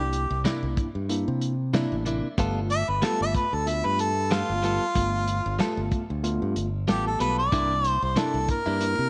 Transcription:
Already playing: C2 A#3 D4 E4 G4
0.13 closed hi-hat
0.30 C2
0.45 C3 A#3 D4 E4, snare, closed hi-hat
0.63 C2
0.77 kick, closed hi-hat
0.95 G2
1.09 A#3 D4 E4, closed hi-hat
1.28 C3
1.41 closed hi-hat
1.73 C3 A#3 D4 E4, snare, closed hi-hat
1.92 A1
2.05 C3 A#3 D4 E4, closed hi-hat
2.38 G1 G3 A3 B3 F4 A4, kick, closed hi-hat
2.70 E5, closed hi-hat
2.88 G1 B4
3.02 G3 A3 B3 F4 A4, snare, closed hi-hat
3.21 G1 E5
3.34 B4, kick, closed hi-hat
3.53 D2 A4
3.67 A3 B3 F4 E5, closed hi-hat
3.85 G2 B4
3.99 A4, closed hi-hat
4.31 G3 A3 B3 F4 A4, snare, closed hi-hat
4.50 G1
4.63 G3 B3 F4 A4, closed hi-hat
4.95 G1 A3 B3 F4, kick, closed hi-hat
5.27 closed hi-hat
5.46 G1
5.59 G3 A3 B3 F4 A4, snare, closed hi-hat
5.77 G1
5.92 kick, closed hi-hat
6.10 D2
6.23 A3 B3 F4, closed hi-hat
6.42 G2
6.56 G1, closed hi-hat
6.88 A1 G3 A3 B3 F4 G4 A4, snare, closed hi-hat
7.08 A4
7.19 B1 G3 B3 F4 A4 B4, closed hi-hat
7.39 D5
7.52 C2 C3 A#3 D4 E4, kick, closed hi-hat
7.84 closed hi-hat
7.89 C5
8.02 C2 C5
8.16 C3 A#3 D4 E4 A4, snare, closed hi-hat
8.34 C2
8.49 A#4, kick, closed hi-hat
8.66 G2 A#3 D4 E4
8.80 A#3 D4 E4, closed hi-hat
8.99 C3

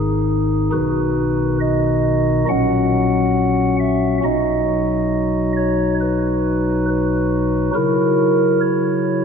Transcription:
Already playing: G#1 G#2 D#3 D#4 G#4
0.72 B1 B2 D#3 D#4 F#4 B4
1.61 D#5
2.49 A#1 A#2 F#3 C#4 F#4 F#5
3.80 E5
4.24 B1 B2 F#3 D#4 F#4 D#5
5.57 C#5
6.01 B4
6.88 B4
7.75 C#3 F#3 E4 F#4 A#4
8.61 C#5

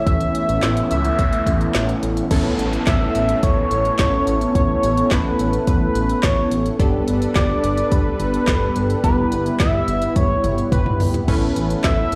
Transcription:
Already playing: E3 A3 C#4 E4
0.07 A1 B3 E5, kick, closed hi-hat, noise sweep
0.21 closed hi-hat
0.35 closed hi-hat
0.49 A1, closed hi-hat
0.63 A1, snare, clap, closed hi-hat
0.77 closed hi-hat
0.91 C#2 E5, closed hi-hat
1.05 closed hi-hat
1.19 A1, kick, closed hi-hat
1.33 closed hi-hat
1.46 A1, kick, closed hi-hat
1.61 closed hi-hat
1.75 A1, snare, clap, closed hi-hat
1.89 closed hi-hat
2.03 A1, closed hi-hat
2.17 closed hi-hat
2.31 A1 A3 B3 C#4 E4 A4, kick, closed hi-hat, crash, downlifter
2.59 A1, closed hi-hat
2.73 closed hi-hat
2.87 A1 E5, kick, snare, clap, closed hi-hat
3.15 A1, closed hi-hat
3.29 closed hi-hat
3.43 A1 C#5, kick, closed hi-hat
3.71 A1, closed hi-hat
3.85 closed hi-hat
3.99 A1, kick, snare, clap, closed hi-hat
4.27 A1, closed hi-hat
4.41 closed hi-hat
4.55 A1 C#5, kick, closed hi-hat
4.83 A1, closed hi-hat
4.97 closed hi-hat
5.11 A1 B4, kick, snare, clap, closed hi-hat
5.39 A1, closed hi-hat
5.53 closed hi-hat
5.67 A1 B4, kick, closed hi-hat
5.95 A1, closed hi-hat
6.09 closed hi-hat
6.23 A1 C#5, kick, snare, clap, closed hi-hat
6.51 A1, closed hi-hat
6.66 closed hi-hat
6.79 G1 G3 B3 D4 G4 A4 B4, kick, closed hi-hat
7.08 G1, closed hi-hat
7.22 closed hi-hat
7.36 G1 D5, kick, snare, clap, closed hi-hat
7.64 G1, closed hi-hat
7.77 closed hi-hat
7.92 G1 B4, kick, closed hi-hat
8.20 G1, closed hi-hat
8.34 closed hi-hat
8.48 G1, kick, snare, clap, closed hi-hat
8.76 G1, closed hi-hat
8.90 closed hi-hat
9.04 G1 B3 E4 G4 B4, kick, closed hi-hat
9.32 G1, closed hi-hat
9.46 closed hi-hat
9.60 G1 E5, kick, snare, clap, closed hi-hat
9.88 G1, closed hi-hat
10.02 closed hi-hat
10.16 G1 C#5, kick, closed hi-hat, high tom
10.44 G1, closed hi-hat, mid tom
10.58 closed hi-hat
10.72 G1 B4, kick, closed hi-hat, mid tom
10.86 mid tom
11.00 G1, floor tom, open hi-hat
11.14 closed hi-hat, floor tom
11.28 A1 A3 C#4 E4 A4 B4, kick, crash
11.56 A1, closed hi-hat
11.70 closed hi-hat
11.84 A1 E5, kick, snare, clap, closed hi-hat
12.12 A1, closed hi-hat

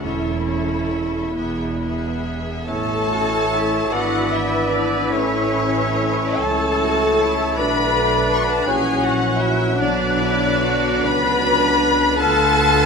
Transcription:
0.03 E1 E2 C#4 E4 A4 E5
0.47 C#4 A4 E5
1.36 E1 E2 B3 G#4 E5
1.81 B3 G#4 E5
2.67 A1 E3 A3 C#4 E4 A4 C#5 A5 E6
3.10 F#4
3.52 E4
3.91 G#1 B3 D4 F#4 B4 D5 F#5
4.33 E4 E5
4.72 D4 D5
5.12 A1 A3 C#4 C#5
6.39 C#2 A4 A5
6.81 F#4
7.19 E4
7.56 B1 D3 D4 F#4 B4 D5 B5 F#6
8.35 C#6
8.43 B5
8.51 A5
8.60 B5
8.67 A#1 E3 F#3 C#4 E4 G#4 C#5 G#5
9.02 F#4 F#5
9.39 E4 E5
9.78 B1 D3 B3 D4 B4 D5
10.20 E4
10.62 F#4
11.03 C#2 D4 B4 B5
12.18 D2 B3 F4 A4 A5 F6

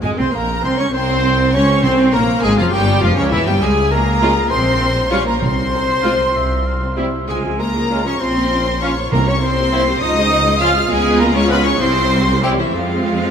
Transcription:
0.02 G#1 G#3 G#4 G#5
0.17 C2 C4 C5 C6
0.32 A#1 A#3 A#4 A#5
0.63 C2 C4 C5 C6
0.77 C#2 C#4 C#5 C#6
0.92 C2 C4 C5 C6
1.52 C#2 C#4 C#5 C#6
1.82 C2 C3 C4 C5 C6
2.13 A#1 A#3 A#4 A#5
2.43 G#1 G#3 G#4 G#5
2.58 F1 F3 F4 F5
2.71 G1 G3 G4 G5
3.01 F1 F3 F4 F5
3.15 C#2 C#3 C#4 C#5
3.30 E1 E3 E4 E5
3.35 E4
3.45 G1 G3 G4 G5
3.60 C#2 G#3 G#4 G#5
3.90 A#3 A#4 A#5
3.94 A#4
4.21 G#3 C#4 F4
4.50 A#1 C4 C5 C6
5.10 G3 C#4 F4 C#5 C#6
5.25 A#3 A#4 A#5
5.40 C2 C3 C4 C5 C6
6.02 G#3 C4 F4
6.35 C2 E5
6.67 F5
6.96 G3 C4 E4 E5
7.28 C#2 G#3 F4 G#4 G#5
7.44 F3 G#4
7.58 G#3 A#3 F4 A#4 A#5
7.74 F3 G#4
7.89 G#3 C#4 F4
8.04 F3 C#4 G#4 C#5 C#6
8.19 A#1 C4 C#4 F4 C5 C6
8.36 A#3 C#4
8.51 C#4 F4
8.67 A#3 C#4
8.80 A#3 C#4 F4 C#5 C#6
8.96 A#3 C#4
9.10 C2 C3 A#3 C4 E4 A#4 A#5
9.25 A#3 C#4 G4 C#5 C#6
9.40 C4 E4 C5 C6
9.57 A#3 G4
9.71 A#3 C4 E4
9.85 A#3 G4
10.01 C#2 F3 D#4 F4 D#5 D#6
10.16 G#3 G#4
10.30 F3 F4
10.44 G#3 G#4
10.60 F3 G#3 C#4 F4 F5 F6
10.75 G#3 G#4
10.89 C#2 G#3 B3 F4 G#4 G#5
11.20 A#3 A#4 A#5
11.34 G#3 C#4 C#5 C#6
11.49 B3 C#4 F4 B4 B5
11.64 C#4 C#5 C#6
11.79 C2 G3 C4 E4 C5 C6
12.26 C#4
12.42 G3 C4 E4 G4 G5
12.58 E3 E4 E5
12.73 F2 F3 G#3 C4 F4 F5

